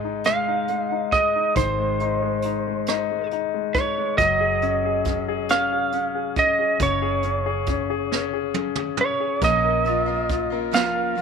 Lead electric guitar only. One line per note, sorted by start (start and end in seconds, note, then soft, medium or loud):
0.00 0.26 D#5 medium
0.26 1.16 F5 medium
1.13 1.57 D#5 medium
1.57 3.27 C5 medium
3.75 4.15 C#5 medium
4.18 5.45 D#5 medium
5.51 6.33 F5 medium
6.39 6.82 D#5 medium
6.83 8.52 C#5 medium
9.01 9.44 C#5 medium
9.44 10.78 D#5 medium
10.74 11.22 F5 medium